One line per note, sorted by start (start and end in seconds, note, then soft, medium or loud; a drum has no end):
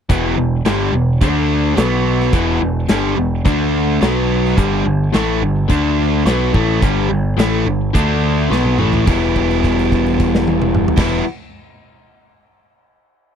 0.09 0.36 E1 medium
0.09 0.36 E2 medium
0.09 0.36 B2 medium
0.09 0.37 E3 loud
0.09 kick loud
0.09 closed hi-hat medium
0.37 0.64 E1 medium
0.37 0.60 E2 medium
0.37 0.60 B2 medium
0.65 0.91 G1 medium
0.65 0.93 G2 medium
0.65 0.93 D3 medium
0.65 0.93 G3 loud
0.65 snare loud
0.65 closed hi-hat medium
0.93 1.19 E1 medium
0.93 1.16 E2 medium
0.93 1.16 B2 medium
1.21 1.73 D2 medium
1.21 1.76 D3 medium
1.21 1.76 A3 medium
1.21 1.77 D4 medium
1.21 kick loud
1.21 closed hi-hat medium
1.76 2.30 B1 medium
1.76 2.32 B2 loud
1.76 2.32 F#3 medium
1.76 2.33 B3 loud
1.76 snare loud
1.76 closed hi-hat medium
2.20 snare soft
2.33 2.59 E1 medium
2.33 2.60 E2 medium
2.33 2.59 B2 medium
2.33 2.61 E3 medium
2.33 kick loud
2.33 closed hi-hat medium
2.61 2.87 E1 medium
2.61 2.84 E2 medium
2.61 2.84 B2 medium
2.89 3.15 G1 medium
2.89 3.16 G2 medium
2.89 3.17 D3 loud
2.89 3.17 G3 loud
2.89 snare loud
2.89 closed hi-hat medium
3.17 3.44 E1 medium
3.17 3.40 E2 medium
3.17 3.40 B2 medium
3.45 3.98 D2 medium
3.45 4.00 D3 medium
3.45 4.01 A3 loud
3.45 4.01 D4 loud
3.45 kick loud
3.45 closed hi-hat medium
4.00 4.54 B1 medium
4.00 4.56 B2 loud
4.00 4.57 F#3 loud
4.00 4.57 B3 loud
4.00 snare loud
4.00 closed hi-hat medium
4.45 snare soft
4.56 4.84 G1 medium
4.56 4.83 G2 medium
4.56 4.84 D3 loud
4.56 4.85 G3 loud
4.56 kick loud
4.56 closed hi-hat medium
4.84 5.12 G1 medium
4.84 5.08 G2 medium
4.84 5.08 D3 medium
5.13 5.41 A1 medium
5.13 5.41 A2 medium
5.13 5.41 E3 loud
5.13 5.41 A3 loud
5.13 snare loud
5.13 closed hi-hat medium
5.42 5.68 G1 medium
5.42 5.65 G2 medium
5.42 5.65 D3 medium
5.69 6.23 D2 medium
5.69 6.25 D3 medium
5.69 6.25 A3 medium
5.69 6.26 D4 medium
5.69 kick medium
5.69 closed hi-hat medium
6.25 6.52 B1 medium
6.25 6.53 B2 loud
6.25 6.54 F#3 loud
6.25 6.54 B3 loud
6.25 snare loud
6.25 closed hi-hat medium
6.54 6.81 A1 medium
6.54 6.82 A2 medium
6.54 6.82 E3 medium
6.54 6.82 A3 loud
6.54 kick loud
6.82 7.09 G1 medium
6.82 7.08 G2 medium
6.82 7.09 D3 medium
6.82 7.10 G3 loud
6.82 kick loud
6.82 closed hi-hat medium
7.09 7.37 G1 medium
7.09 7.33 G2 medium
7.09 7.33 D3 medium
7.38 7.65 A1 medium
7.38 7.66 A2 medium
7.38 7.66 E3 medium
7.38 7.67 A3 medium
7.38 snare loud
7.38 closed hi-hat medium
7.65 7.93 G1 medium
7.65 7.90 G2 medium
7.65 7.90 D3 medium
7.94 8.47 D2 medium
7.94 8.50 D3 medium
7.94 8.50 A3 medium
7.94 8.50 D4 medium
7.94 kick loud
7.94 closed hi-hat medium
8.51 8.77 B1 medium
8.51 8.78 B2 medium
8.51 8.79 F#3 loud
8.51 8.79 B3 loud
8.51 snare medium
8.65 mid tom medium
8.78 9.06 A1 medium
8.78 9.05 A2 medium
8.78 9.04 E3 medium
8.78 9.07 A3 loud
8.78 mid tom medium
8.93 floor tom medium
9.05 10.87 E1 medium
9.05 10.96 E2 medium
9.05 10.99 B2 medium
9.05 10.96 E3 medium
9.05 10.97 G3 medium
9.05 10.98 B3 medium
9.05 kick loud
9.05 crash medium
9.10 10.99 E4 medium
9.36 kick medium
9.36 crash soft
9.51 crash soft
9.64 kick medium
9.64 crash soft
9.79 crash soft
9.92 kick medium
9.92 crash soft
10.06 crash medium
10.20 kick medium
10.20 crash medium
10.35 snare medium
10.47 high tom medium
10.62 mid tom loud
10.75 mid tom loud
10.88 floor tom loud
10.96 11.21 E1 medium
10.96 11.23 E2 medium
10.96 11.24 B2 medium
10.96 11.22 E3 medium
10.96 11.23 G3 medium
10.96 11.23 B3 medium
10.96 11.24 E4 loud
10.96 kick loud
10.96 snare loud
10.96 crash loud
11.01 11.25 E3 medium